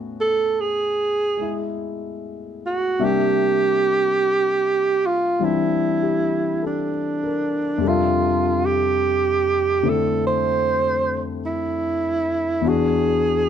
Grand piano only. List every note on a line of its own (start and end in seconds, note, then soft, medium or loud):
0.00 3.00 A2 soft
0.00 3.00 A3 soft
0.00 3.00 B3 soft
0.00 3.01 C#4 soft
0.00 3.01 F#4 medium
1.37 2.98 G#3 soft
1.37 3.00 E4 soft
2.99 7.78 C3 soft
2.99 5.38 G3 soft
2.99 7.81 A#3 soft
2.99 5.41 D4 soft
2.99 7.81 E5 soft
5.39 7.81 E3 soft
5.39 7.80 G3 soft
5.39 7.82 C4 soft
5.39 7.82 D4 soft
6.02 6.88 G4 soft
6.63 7.58 A4 soft
7.24 8.08 A#4 soft
7.78 12.60 F2 soft
7.78 12.61 C3 soft
7.78 12.62 G3 soft
7.84 12.63 D4 soft
7.84 12.64 A4 soft
7.88 12.66 E5 soft
9.83 12.62 D3 soft
9.83 12.63 A3 soft
9.83 12.63 C4 soft
9.83 12.63 E4 soft
12.61 13.49 E2 soft
12.61 13.49 E3 soft
12.61 13.49 D4 soft
12.66 13.49 F#4 soft